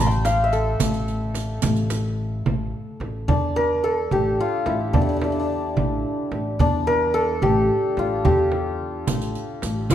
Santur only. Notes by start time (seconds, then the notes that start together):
Already playing: A5 C6 D6
0.06 G5
0.25 F5
0.44 E5
0.53 A4
3.28 D4
3.56 A#4
3.84 A4
4.12 G4
4.40 F4
4.66 E4
4.93 D4
5.02 D4
5.09 D4
5.17 D4
5.24 D4
5.32 D4
5.39 D4
6.60 D4
6.87 A#4
7.14 A4
7.42 G4
7.99 F4
8.25 G4
9.91 F4